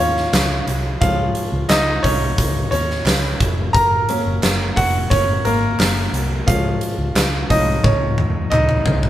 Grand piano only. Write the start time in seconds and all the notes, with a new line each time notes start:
Already playing: F3 G#3 D#4 F4 D#5 F5
0.00 C#4 C#5
1.01 F3 G#3 C#4 F4 F5
1.69 D#4 D#5
2.03 C#4 C#5
2.71 C#4 C#5
3.73 A#4 A#5
4.09 F#3 A#3 C#4
4.76 F#4 F#5
5.10 C#4 C#5
5.45 A#3 A#4
6.46 F3 G#3 C#4 F4 F5
7.49 F3 G#3 C#4 D#4 D#5
7.84 C#4 C#5
8.50 D#4 D#5